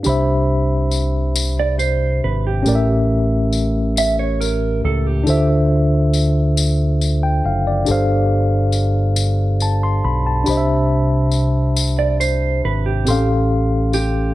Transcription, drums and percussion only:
0.04 tambourine soft
0.91 tambourine soft
1.36 tambourine loud
1.79 tambourine medium
2.66 tambourine medium
3.53 tambourine soft
3.97 tambourine medium
4.41 tambourine medium
5.27 tambourine medium
6.14 tambourine soft
6.57 tambourine medium
7.01 tambourine medium
7.86 tambourine medium
8.72 tambourine soft
9.16 tambourine medium
9.60 tambourine medium
10.46 tambourine soft
11.31 tambourine soft
11.76 tambourine medium
12.21 tambourine medium
13.07 tambourine medium
13.93 tambourine soft

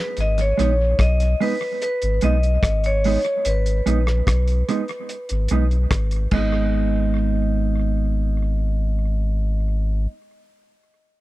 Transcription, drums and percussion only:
0.17 closed hi-hat medium
0.38 closed hi-hat medium
0.59 closed hi-hat medium
0.99 kick loud
0.99 cross-stick loud
0.99 closed hi-hat medium
1.20 closed hi-hat medium
1.41 open hi-hat medium
1.82 closed hi-hat medium
2.02 closed hi-hat medium
2.21 closed hi-hat medium
2.43 closed hi-hat soft
2.63 kick loud
2.63 cross-stick loud
2.63 closed hi-hat medium
2.84 closed hi-hat medium
3.04 open hi-hat medium
3.24 closed hi-hat soft
3.45 closed hi-hat medium
3.66 closed hi-hat medium
3.87 closed hi-hat medium
4.07 cross-stick medium
4.27 kick loud
4.27 cross-stick loud
4.27 closed hi-hat medium
4.48 closed hi-hat medium
4.69 closed hi-hat medium
4.88 closed hi-hat soft
5.09 closed hi-hat medium
5.29 closed hi-hat medium
5.48 closed hi-hat medium
5.71 closed hi-hat soft
5.91 kick loud
5.91 cross-stick loud
5.91 closed hi-hat medium
6.11 closed hi-hat medium
6.31 kick loud
6.31 crash medium

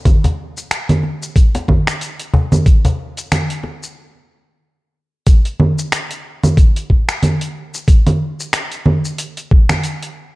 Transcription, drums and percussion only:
0.05 kick loud
0.05 closed hi-hat medium
0.05 low conga medium
0.05 shaker medium
0.24 cajon bass medium
0.24 cajon slap soft
0.24 closed hi-hat soft
0.24 shaker soft
0.57 shaker medium
0.71 finger snap medium
0.71 closed hi-hat medium
0.71 shaker medium
0.89 closed hi-hat soft
0.89 low conga medium
0.89 shaker soft
1.03 cajon slap soft
1.23 shaker medium
1.36 kick loud
1.36 closed hi-hat medium
1.36 shaker soft
1.55 cajon slap medium
1.55 closed hi-hat soft
1.55 shaker soft
1.68 kick medium
1.68 low conga medium
1.87 finger snap medium
1.87 shaker medium
2.01 closed hi-hat medium
2.01 shaker soft
2.20 closed hi-hat soft
2.20 shaker soft
2.34 cajon bass medium
2.52 low conga medium
2.52 shaker medium
2.66 kick loud
2.66 closed hi-hat medium
2.66 shaker medium
2.85 cajon bass medium
2.85 cajon slap soft
2.85 closed hi-hat soft
2.85 shaker soft
3.17 closed hi-hat soft
3.17 shaker medium
3.32 finger snap medium
3.32 closed hi-hat medium
3.32 low conga medium
3.32 shaker soft
3.50 closed hi-hat soft
3.50 shaker soft
3.63 cajon slap soft
3.83 shaker medium
5.27 kick loud
5.27 closed hi-hat medium
5.27 shaker medium
5.45 closed hi-hat soft
5.45 shaker soft
5.60 low conga medium
5.79 shaker medium
5.92 finger snap medium
5.92 closed hi-hat medium
5.92 shaker medium
6.11 closed hi-hat soft
6.11 shaker soft
6.44 low conga medium
6.44 shaker medium
6.57 kick loud
6.57 closed hi-hat medium
6.57 shaker medium
6.76 closed hi-hat soft
6.76 shaker soft
6.90 kick medium
7.09 finger snap medium
7.09 shaker medium
7.23 closed hi-hat medium
7.23 low conga medium
7.23 shaker medium
7.41 closed hi-hat soft
7.41 shaker soft
7.74 shaker medium
7.88 kick loud
7.88 closed hi-hat medium
7.88 shaker medium
8.07 closed hi-hat soft
8.07 low conga medium
8.07 shaker soft
8.40 shaker medium
8.53 finger snap medium
8.53 closed hi-hat medium
8.53 shaker medium
8.72 closed hi-hat soft
8.72 shaker soft
8.86 low conga medium
9.05 shaker medium
9.18 closed hi-hat medium
9.18 shaker medium
9.37 closed hi-hat soft
9.37 shaker soft
9.51 kick loud
9.69 finger snap medium
9.69 low conga medium
9.69 shaker medium
9.83 closed hi-hat medium
9.83 shaker medium
10.03 closed hi-hat soft
10.03 shaker soft

